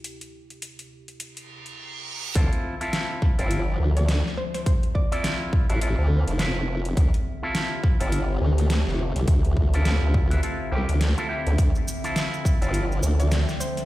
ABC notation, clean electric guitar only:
X:1
M:4/4
L:1/16
Q:"Swing 16ths" 1/4=104
K:Dm
V:1 name="Clean electric guitar"
z16 | [CEFA]3 [CEFA]4 [CEFA]2 z6 z | z3 [CEFA]4 [CEF=B] [CEFA]4 [CEFB] z3 | z3 [CEFA]4 [CEFA]2 z6 z |
z3 [CEFA]4 [CEF=B] [CEFA]2 [CEFG] z2 [CEFA] [CEFG]2 | z3 [CEFA]4 [CEFA]2 z6 z |]